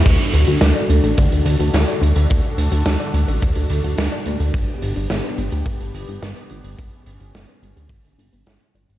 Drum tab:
CC |x---------------|----------------|----------------|----------------|
HH |x-xxxxxxxxxxxxxx|x-xxxxxxxxxxxxxx|x-xxxxxxxxxxxxxx|x-xxxxxxxxxxxxxx|
SD |----o-------o---|----o-------o---|----o-------o---|----o-------o---|
BD |o-------o-------|o-------o-------|o-------o-------|o-------o-------|